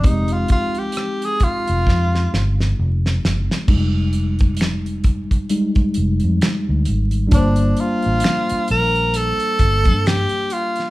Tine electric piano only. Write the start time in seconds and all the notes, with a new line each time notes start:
0.00 F3 C4
0.04 D#4 G4
0.09 G#3
3.67 G3 G#3 D#4
5.50 G3 G#3 D#4
7.27 G3 D4 F4
7.33 A#3 C5 A5